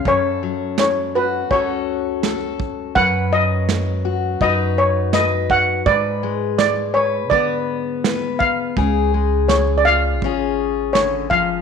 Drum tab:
SD |--o---o-|--o---o-|--o---o-|--o---o-|
BD |o---o--o|o---o--o|o---o--o|o---o--o|